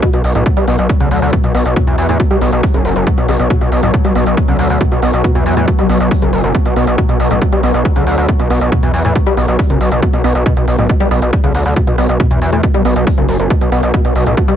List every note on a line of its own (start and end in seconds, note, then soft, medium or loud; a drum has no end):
0.00 10.45 B2 medium
0.00 0.09 B2 loud
0.00 10.45 F#3 medium
0.00 kick loud
0.00 closed hi-hat medium
0.13 0.22 B1 medium
0.13 0.20 B2 medium
0.13 closed hi-hat medium
0.24 0.33 B1 loud
0.24 open hi-hat loud
0.35 0.44 B1 medium
0.35 0.42 A2 medium
0.35 closed hi-hat medium
0.46 0.50 B2 medium
0.46 kick loud
0.46 closed hi-hat medium
0.57 0.66 B1 medium
0.57 0.64 G3 loud
0.57 closed hi-hat medium
0.68 0.77 B1 loud
0.68 0.78 B3 medium
0.68 open hi-hat loud
0.79 0.88 B1 medium
0.79 closed hi-hat medium
0.89 kick loud
0.89 closed hi-hat medium
1.00 1.09 D2 medium
1.00 1.07 C#3 medium
1.00 closed hi-hat medium
1.11 1.20 D2 loud
1.11 open hi-hat loud
1.22 1.31 D2 medium
1.22 open hi-hat medium
1.33 1.37 B2 medium
1.33 kick loud
1.33 closed hi-hat medium
1.44 1.53 B1 medium
1.44 1.48 B2 medium
1.44 closed hi-hat medium
1.54 1.64 B1 loud
1.54 1.65 B3 medium
1.54 open hi-hat loud
1.66 1.74 B1 loud
1.66 closed hi-hat medium
1.76 1.83 B2 loud
1.76 kick loud
1.76 closed hi-hat medium
1.87 1.96 E2 medium
1.87 1.94 B2 medium
1.87 closed hi-hat medium
1.98 2.07 E2 loud
1.98 open hi-hat loud
2.09 2.18 E2 medium
2.09 2.16 A2 medium
2.09 closed hi-hat medium
2.20 2.24 B2 medium
2.20 kick loud
2.20 closed hi-hat medium
2.31 2.40 B1 medium
2.31 2.38 G3 loud
2.31 closed hi-hat medium
2.41 2.51 B1 loud
2.41 2.52 B3 medium
2.41 open hi-hat loud
2.52 2.61 B1 medium
2.52 closed hi-hat medium
2.63 kick loud
2.63 open hi-hat medium
2.74 2.83 F#1 medium
2.74 2.81 C#3 medium
2.74 closed hi-hat medium
2.85 2.94 F#1 loud
2.85 open hi-hat loud
2.96 3.05 F#1 medium
2.96 closed hi-hat medium
3.07 3.11 B2 medium
3.07 kick loud
3.07 closed hi-hat medium
3.18 3.27 B1 medium
3.18 3.25 B2 medium
3.18 closed hi-hat medium
3.28 3.38 B1 loud
3.28 3.33 C#3 medium
3.28 open hi-hat loud
3.39 3.48 B1 medium
3.39 3.44 B2 medium
3.39 closed hi-hat medium
3.50 3.57 B2 loud
3.50 kick loud
3.50 closed hi-hat medium
3.61 3.70 B1 medium
3.61 3.68 B2 medium
3.61 closed hi-hat medium
3.72 3.81 B1 medium
3.72 open hi-hat loud
3.83 3.92 B1 medium
3.83 3.90 A2 medium
3.83 closed hi-hat medium
3.94 3.98 B2 medium
3.94 kick loud
3.94 closed hi-hat medium
4.05 4.14 B1 medium
4.05 4.12 G3 loud
4.05 closed hi-hat medium
4.15 4.25 B1 loud
4.15 4.26 B3 medium
4.15 open hi-hat loud
4.26 4.35 B1 medium
4.26 closed hi-hat medium
4.37 kick loud
4.37 closed hi-hat medium
4.48 4.57 D2 medium
4.48 4.55 C#3 medium
4.48 closed hi-hat medium
4.59 4.68 D2 loud
4.59 open hi-hat loud
4.70 4.79 D2 medium
4.70 open hi-hat medium
4.81 4.85 B2 medium
4.81 kick loud
4.81 closed hi-hat medium
4.92 5.01 B1 medium
4.92 4.96 B2 medium
4.92 closed hi-hat medium
5.02 5.11 B1 loud
5.02 5.13 B3 medium
5.02 open hi-hat loud
5.13 5.22 B1 medium
5.13 closed hi-hat medium
5.24 5.31 B2 loud
5.24 kick loud
5.24 closed hi-hat medium
5.35 5.44 E2 medium
5.35 5.42 B2 medium
5.35 closed hi-hat medium
5.46 5.55 E2 loud
5.46 open hi-hat loud
5.57 5.66 E2 loud
5.57 5.64 A2 medium
5.57 closed hi-hat medium
5.68 5.72 B2 medium
5.68 kick loud
5.68 closed hi-hat medium
5.79 5.88 B1 medium
5.79 5.86 G3 loud
5.79 closed hi-hat medium
5.89 5.98 B1 loud
5.89 6.00 B3 medium
5.89 open hi-hat loud
6.00 6.09 B1 medium
6.00 closed hi-hat medium
6.11 kick loud
6.11 open hi-hat medium
6.22 6.31 F#1 medium
6.22 6.29 C#3 medium
6.22 closed hi-hat medium
6.33 6.42 F#1 loud
6.33 open hi-hat loud
6.44 6.53 F#1 medium
6.44 closed hi-hat medium
6.55 6.59 B2 medium
6.55 kick loud
6.55 closed hi-hat medium
6.66 6.74 B1 medium
6.66 6.70 B2 medium
6.66 closed hi-hat medium
6.76 6.85 B1 loud
6.76 6.87 B3 medium
6.76 open hi-hat loud
6.87 6.96 B1 medium
6.87 closed hi-hat medium
6.98 7.05 B2 loud
6.98 kick loud
6.98 closed hi-hat medium
7.09 7.18 B1 medium
7.09 7.16 B2 medium
7.09 closed hi-hat medium
7.20 7.29 B1 loud
7.20 open hi-hat loud
7.31 7.40 B1 medium
7.31 7.38 A2 medium
7.31 closed hi-hat medium
7.42 7.46 B2 medium
7.42 kick loud
7.42 closed hi-hat medium
7.52 7.61 B1 medium
7.52 7.59 G3 loud
7.52 closed hi-hat medium
7.63 7.72 B1 loud
7.63 7.74 B3 medium
7.63 open hi-hat loud
7.74 7.83 B1 medium
7.74 closed hi-hat medium
7.85 kick loud
7.85 closed hi-hat medium
7.96 8.05 D2 medium
7.96 8.03 C#3 medium
7.96 closed hi-hat medium
8.07 8.16 D2 loud
8.07 open hi-hat loud
8.18 8.27 D2 medium
8.18 open hi-hat medium
8.29 8.33 B2 medium
8.29 kick loud
8.29 closed hi-hat medium
8.40 8.48 B1 medium
8.40 8.44 B2 medium
8.40 closed hi-hat medium
8.50 8.59 B1 loud
8.50 8.61 B3 medium
8.50 open hi-hat loud
8.61 8.70 B1 medium
8.61 closed hi-hat medium
8.72 8.79 B2 loud
8.72 kick loud
8.72 closed hi-hat medium
8.83 8.92 E2 medium
8.83 8.90 B2 medium
8.83 closed hi-hat medium
8.94 9.03 E2 loud
8.94 open hi-hat loud
9.05 9.14 E2 medium
9.05 9.12 A2 medium
9.05 closed hi-hat medium
9.16 9.20 B2 medium
9.16 kick loud
9.16 closed hi-hat medium
9.26 9.35 B1 medium
9.26 9.33 G3 loud
9.26 closed hi-hat medium
9.37 9.46 B1 loud
9.37 9.48 B3 medium
9.37 open hi-hat loud
9.48 9.57 B1 medium
9.48 closed hi-hat medium
9.59 kick loud
9.59 open hi-hat medium
9.70 9.79 F#1 medium
9.70 9.77 C#3 medium
9.70 closed hi-hat medium
9.81 9.90 B1 loud
9.81 open hi-hat loud
9.92 10.01 B1 medium
9.92 closed hi-hat medium
10.02 10.07 B2 medium
10.02 kick loud
10.02 closed hi-hat medium
10.13 10.22 B1 medium
10.13 10.18 B2 medium
10.13 closed hi-hat medium
10.24 10.33 B1 loud
10.24 10.35 B3 medium
10.24 open hi-hat loud
10.35 10.44 B1 medium
10.35 closed hi-hat medium
10.46 10.53 B2 loud
10.46 14.56 B2 medium
10.46 14.56 F#3 medium
10.46 kick loud
10.46 closed hi-hat medium
10.57 10.66 B1 medium
10.57 10.64 B2 medium
10.57 closed hi-hat medium
10.68 10.77 B1 loud
10.68 open hi-hat loud
10.78 10.88 B1 medium
10.78 10.86 A2 medium
10.78 closed hi-hat medium
10.89 10.94 B2 medium
10.89 kick loud
10.89 closed hi-hat medium
11.00 11.09 B1 medium
11.00 11.07 G3 loud
11.00 closed hi-hat medium
11.11 11.20 B1 loud
11.11 11.22 B3 medium
11.11 open hi-hat loud
11.22 11.31 B1 medium
11.22 closed hi-hat medium
11.33 kick loud
11.33 closed hi-hat medium
11.44 11.53 D2 medium
11.44 11.51 C#3 medium
11.44 closed hi-hat medium
11.55 11.64 D2 loud
11.55 open hi-hat loud
11.66 11.74 D2 medium
11.66 open hi-hat medium
11.76 11.81 B2 medium
11.76 kick loud
11.76 closed hi-hat medium
11.87 11.96 B1 medium
11.87 11.91 B2 medium
11.87 closed hi-hat medium
11.98 12.07 B1 loud
11.98 12.08 B3 medium
11.98 open hi-hat loud
12.09 12.18 B1 medium
12.09 closed hi-hat medium
12.20 12.27 B2 loud
12.20 kick loud
12.20 closed hi-hat medium
12.31 12.40 E2 medium
12.31 12.38 B2 medium
12.31 closed hi-hat medium
12.42 12.51 E2 loud
12.42 open hi-hat loud
12.53 12.61 E2 medium
12.53 12.60 A2 medium
12.53 closed hi-hat medium
12.63 12.68 B2 medium
12.63 kick loud
12.63 closed hi-hat medium
12.74 12.83 B1 medium
12.74 12.81 G3 loud
12.74 closed hi-hat medium
12.85 12.94 B1 loud
12.85 12.95 B3 medium
12.85 open hi-hat loud
12.96 13.05 B1 medium
12.96 closed hi-hat medium
13.07 kick loud
13.07 open hi-hat medium
13.18 13.27 F#1 medium
13.18 13.25 C#3 medium
13.18 closed hi-hat medium
13.29 13.38 F#1 loud
13.29 open hi-hat loud
13.40 13.48 F#1 medium
13.40 closed hi-hat medium
13.50 13.55 B2 medium
13.50 kick loud
13.50 closed hi-hat medium
13.61 13.70 B1 medium
13.61 13.65 B2 medium
13.61 closed hi-hat medium
13.72 13.81 B1 loud
13.72 13.82 B3 medium
13.72 open hi-hat loud
13.83 13.92 B1 medium
13.83 closed hi-hat medium
13.94 14.01 B2 loud
13.94 kick loud
13.94 closed hi-hat medium
14.05 14.14 B1 medium
14.05 14.12 B2 medium
14.05 closed hi-hat medium
14.16 14.25 B1 loud
14.16 open hi-hat loud
14.26 14.35 B1 medium
14.26 14.33 A2 medium
14.26 closed hi-hat medium
14.37 14.42 B2 medium
14.37 kick loud
14.37 closed hi-hat medium
14.48 14.56 B1 medium
14.48 14.55 G3 loud
14.48 closed hi-hat medium